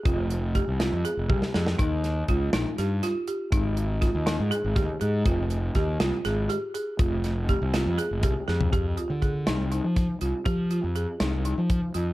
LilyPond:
<<
  \new Staff \with { instrumentName = "Marimba" } { \time 7/8 \key f \minor \tempo 4 = 121 f'4 g'8 f'8 aes'8 g'8 aes'8 | ees'4 f'8 ees'8 g'8 f'8 g'8 | ees'4 f'8 ees'8 aes'8 g'8 aes'8 | f'4 g'8 f'8 aes'8 g'8 aes'8 |
f'4 g'8 f'8 aes'8 g'8 aes'8 | \key f \dorian g'8 f'8 aes'8 ees'8 ees'4 f'8 | g'8 f'8 aes'8 ees'8 ees'4 f'8 | }
  \new Staff \with { instrumentName = "Fingered electric bass" } { \clef bass \time 7/8 \key f \minor f,,4~ f,,16 c,8 f,16 r16 f,,16 c,16 r16 f,8 | ees,4 des,8 bes,,16 r16 g,8 r4 | aes,,4~ aes,,16 ees,8 aes,16 r16 aes,,16 ees,16 r16 aes,8 | f,,4 ees,8 c,16 r16 aes,,8 r4 |
f,,4~ f,,16 c,8 f,16 r16 f,,16 c,16 r16 f,8 | \key f \dorian f,8 r16 d8. c,8. f8 r16 c,16 r16 | f8. f,8 r16 c,8. f8 r16 f,8 | }
  \new DrumStaff \with { instrumentName = "Drums" } \drummode { \time 7/8 <hh bd>8 hh8 <hh bd>8 <hh sn>8 hh8 <bd tommh>16 sn16 sn16 sn16 | <hh bd>8 <hh sn>8 <hh bd>8 <hh sn>8 <hh sn>8 <hh sn>8 hh8 | <hh bd>8 hh8 <hh bd sn>8 <hh sn>8 hh8 <hh bd sn>8 hh8 | <hh bd>8 hh8 <hh bd sn>8 <hh sn>8 <hh sn>8 hh8 hh8 |
<hh bd>8 <hh sn>8 <hh bd>8 <hh sn>8 hh8 <hh bd>8 sn16 tomfh16 | <hh bd>8 hh8 <hh bd>8 <hh sn>8 hh8 <hh bd sn>8 hh8 | <hh bd>8 hh8 hh8 <hh sn>8 hh8 <hh bd>8 hh8 | }
>>